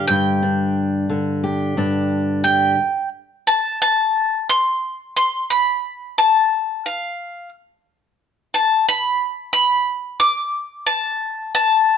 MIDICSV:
0, 0, Header, 1, 3, 480
1, 0, Start_track
1, 0, Tempo, 675676
1, 58, Time_signature, 4, 2, 24, 8
1, 8508, End_track
2, 0, Start_track
2, 0, Title_t, "Mandolin"
2, 0, Program_c, 0, 25
2, 53, Note_on_c, 0, 79, 70
2, 1468, Note_off_c, 0, 79, 0
2, 1733, Note_on_c, 0, 79, 78
2, 2188, Note_off_c, 0, 79, 0
2, 2467, Note_on_c, 0, 81, 80
2, 2687, Note_off_c, 0, 81, 0
2, 2712, Note_on_c, 0, 81, 81
2, 3190, Note_off_c, 0, 81, 0
2, 3193, Note_on_c, 0, 84, 93
2, 3661, Note_off_c, 0, 84, 0
2, 3669, Note_on_c, 0, 84, 82
2, 3907, Note_off_c, 0, 84, 0
2, 3910, Note_on_c, 0, 83, 88
2, 4389, Note_off_c, 0, 83, 0
2, 4391, Note_on_c, 0, 81, 88
2, 4872, Note_on_c, 0, 77, 65
2, 4881, Note_off_c, 0, 81, 0
2, 5319, Note_off_c, 0, 77, 0
2, 6068, Note_on_c, 0, 81, 73
2, 6289, Note_off_c, 0, 81, 0
2, 6313, Note_on_c, 0, 83, 87
2, 6762, Note_off_c, 0, 83, 0
2, 6770, Note_on_c, 0, 83, 84
2, 7242, Note_off_c, 0, 83, 0
2, 7245, Note_on_c, 0, 86, 91
2, 7716, Note_off_c, 0, 86, 0
2, 7719, Note_on_c, 0, 81, 95
2, 8194, Note_off_c, 0, 81, 0
2, 8203, Note_on_c, 0, 81, 85
2, 8508, Note_off_c, 0, 81, 0
2, 8508, End_track
3, 0, Start_track
3, 0, Title_t, "Steel-string acoustic guitar"
3, 0, Program_c, 1, 25
3, 0, Note_on_c, 1, 50, 50
3, 0, Note_on_c, 1, 67, 53
3, 66, Note_on_c, 1, 43, 60
3, 302, Note_on_c, 1, 62, 44
3, 769, Note_off_c, 1, 50, 0
3, 778, Note_on_c, 1, 50, 49
3, 1017, Note_off_c, 1, 67, 0
3, 1020, Note_on_c, 1, 67, 53
3, 1249, Note_off_c, 1, 43, 0
3, 1253, Note_off_c, 1, 62, 0
3, 1257, Note_on_c, 1, 43, 48
3, 1262, Note_on_c, 1, 62, 48
3, 1729, Note_off_c, 1, 67, 0
3, 1738, Note_on_c, 1, 67, 47
3, 1950, Note_off_c, 1, 43, 0
3, 1950, Note_off_c, 1, 67, 0
3, 1952, Note_off_c, 1, 62, 0
3, 1979, Note_off_c, 1, 50, 0
3, 8508, End_track
0, 0, End_of_file